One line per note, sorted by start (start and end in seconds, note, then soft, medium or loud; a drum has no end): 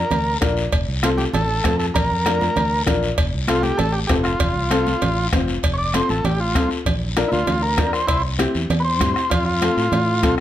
0.00 0.38 A#4 loud
0.11 0.36 D2 loud
0.11 cowbell medium
0.11 low conga medium
0.11 long guiro medium
0.41 0.66 A#1 medium
0.41 0.63 D4 medium
0.41 0.63 F4 medium
0.41 0.63 A#4 medium
0.41 bombo low medium
0.41 bombo rim medium
0.41 cowbell medium
0.41 high conga medium
0.41 short guiro medium
0.57 short guiro medium
0.72 0.85 F1 medium
0.72 bombo low medium
0.72 cowbell loud
0.72 long guiro medium
0.88 1.25 C2 medium
1.03 1.25 C4 medium
1.03 1.10 F4 medium
1.03 1.25 F4 medium
1.03 1.25 A4 medium
1.03 bombo rim medium
1.03 cowbell medium
1.03 high conga medium
1.03 short guiro medium
1.18 1.25 G4 medium
1.18 high conga medium
1.18 short guiro medium
1.34 1.59 A1 loud
1.34 1.77 A4 loud
1.34 cowbell medium
1.34 low conga medium
1.34 long guiro medium
1.64 1.89 F2 medium
1.64 1.86 C4 medium
1.64 1.86 F4 medium
1.64 1.87 A4 medium
1.64 bombo low medium
1.64 bombo rim medium
1.64 cowbell medium
1.64 high conga medium
1.64 low timbale medium
1.64 short guiro medium
1.79 1.86 A4 medium
1.79 short guiro medium
1.94 2.08 A#1 loud
1.94 2.83 A#4 loud
1.94 bombo low medium
1.94 cowbell loud
1.94 low conga medium
1.94 long guiro medium
2.11 2.48 F2 medium
2.26 2.47 D4 medium
2.26 2.48 F4 medium
2.26 2.48 A#4 medium
2.26 bombo rim medium
2.26 cowbell medium
2.26 high conga medium
2.26 short guiro medium
2.41 high conga medium
2.41 short guiro medium
2.56 2.81 D2 loud
2.56 cowbell medium
2.56 low conga medium
2.56 long guiro medium
2.86 3.12 A#1 medium
2.86 3.08 D4 medium
2.86 3.09 F4 medium
2.86 3.09 A#4 medium
2.86 bombo low medium
2.86 bombo rim medium
2.86 cowbell medium
2.86 high conga medium
2.86 low conga medium
2.86 short guiro medium
3.03 short guiro medium
3.18 3.30 F1 loud
3.18 bombo low medium
3.18 cowbell loud
3.18 long guiro medium
3.34 3.70 C2 medium
3.48 3.70 C4 medium
3.48 3.62 F4 medium
3.48 3.70 F4 medium
3.48 3.70 A4 medium
3.48 bombo rim medium
3.48 cowbell medium
3.48 high conga medium
3.48 short guiro medium
3.63 3.79 G4 loud
3.63 high conga medium
3.63 short guiro medium
3.77 4.04 A1 loud
3.77 3.94 A4 loud
3.77 cowbell medium
3.77 low conga medium
3.77 long guiro medium
3.92 4.00 G4 medium
4.07 4.34 F1 medium
4.07 4.31 C4 medium
4.07 4.31 F4 medium
4.07 4.15 G4 loud
4.07 4.31 A4 medium
4.07 bombo low medium
4.07 bombo rim medium
4.07 cowbell medium
4.07 high conga medium
4.07 low timbale medium
4.07 short guiro medium
4.23 5.28 F4 medium
4.23 bombo rim medium
4.23 short guiro medium
4.40 4.53 F1 loud
4.40 bombo low medium
4.40 cowbell loud
4.40 low conga medium
4.40 long guiro medium
4.56 4.93 C2 medium
4.70 4.92 C4 medium
4.70 4.92 F4 medium
4.70 4.93 A4 loud
4.70 bombo rim medium
4.70 cowbell medium
4.70 high conga medium
4.70 short guiro medium
4.86 high conga medium
4.86 short guiro medium
5.01 5.27 A1 loud
5.01 cowbell medium
5.01 low conga medium
5.01 long guiro medium
5.32 5.57 F1 medium
5.32 5.54 C4 medium
5.32 5.54 F4 medium
5.32 5.54 C5 loud
5.32 bombo low medium
5.32 bombo rim medium
5.32 cowbell medium
5.32 high conga medium
5.32 low conga medium
5.32 low timbale medium
5.32 short guiro medium
5.48 short guiro medium
5.63 6.00 F1 loud
5.63 bombo low medium
5.63 cowbell loud
5.63 long guiro medium
5.74 5.76 C#5 medium
5.78 5.93 D5 loud
5.93 6.15 C4 medium
5.93 6.15 F4 medium
5.93 6.15 A4 medium
5.93 6.09 C5 medium
5.93 bombo rim medium
5.93 cowbell medium
5.93 high conga medium
5.93 short guiro medium
6.09 6.22 A1 medium
6.09 6.25 A4 medium
6.09 high conga medium
6.09 short guiro medium
6.24 6.55 A1 loud
6.24 6.40 G4 medium
6.24 cowbell medium
6.24 low conga medium
6.24 long guiro medium
6.40 6.70 F4 medium
6.55 6.68 C2 medium
6.55 6.76 C4 medium
6.55 6.77 F4 medium
6.55 6.77 A4 medium
6.55 bombo low medium
6.55 bombo rim medium
6.55 cowbell medium
6.55 high conga medium
6.55 short guiro medium
6.70 short guiro medium
6.86 7.23 A#1 loud
6.86 bombo low medium
6.86 cowbell loud
6.86 low conga medium
6.86 long guiro medium
7.16 7.38 D4 medium
7.16 7.38 F4 medium
7.16 7.38 A#4 loud
7.16 bombo rim medium
7.16 cowbell medium
7.16 high conga medium
7.16 short guiro medium
7.28 7.30 E4 medium
7.28 high conga medium
7.28 short guiro medium
7.32 7.44 D2 medium
7.32 7.62 F4 medium
7.47 7.78 D2 loud
7.47 cowbell medium
7.47 low conga medium
7.47 long guiro medium
7.62 7.92 A#4 medium
7.78 7.90 F2 medium
7.78 7.99 D4 medium
7.78 7.99 F4 medium
7.78 7.99 A#4 medium
7.78 bombo low medium
7.78 bombo rim medium
7.78 cowbell medium
7.78 high conga medium
7.78 low conga medium
7.78 low timbale medium
7.78 short guiro medium
7.93 8.07 C5 medium
7.93 bombo rim medium
7.93 short guiro medium
8.07 8.45 C2 loud
8.07 8.22 E4 medium
8.07 8.23 C5 loud
8.07 bombo low medium
8.07 cowbell loud
8.07 long guiro medium
8.38 8.60 C4 medium
8.38 8.60 E4 medium
8.38 8.61 G4 loud
8.38 bombo rim medium
8.38 cowbell medium
8.38 high conga medium
8.38 short guiro medium
8.54 8.67 E2 medium
8.54 short guiro medium
8.70 9.01 E2 loud
8.70 cowbell medium
8.70 low conga medium
8.70 long guiro medium
8.80 8.82 B4 medium
8.85 9.13 C5 medium
9.00 9.13 G2 medium
9.00 9.22 C4 medium
9.00 9.22 E4 medium
9.00 9.22 G4 medium
9.00 bombo low medium
9.00 bombo rim medium
9.00 cowbell medium
9.00 high conga medium
9.00 short guiro medium
9.14 9.30 C5 medium
9.14 bombo rim medium
9.14 short guiro medium
9.30 9.68 F2 loud
9.30 9.44 F4 medium
9.30 bombo low medium
9.30 cowbell loud
9.30 low conga medium
9.30 long guiro medium
9.46 10.35 F4 loud
9.61 9.83 C4 medium
9.61 9.83 F4 medium
9.61 9.83 A4 medium
9.61 bombo rim medium
9.61 cowbell medium
9.61 high conga medium
9.61 short guiro medium
9.77 9.89 A2 medium
9.77 short guiro medium
9.92 10.25 A2 loud
9.92 cowbell medium
9.92 low conga medium
9.92 long guiro medium
10.23 10.35 C2 medium
10.23 10.40 C4 medium
10.23 10.40 F4 medium
10.23 10.40 A4 medium
10.23 bombo low medium
10.23 bombo rim medium
10.23 cowbell medium
10.23 high conga medium
10.23 short guiro medium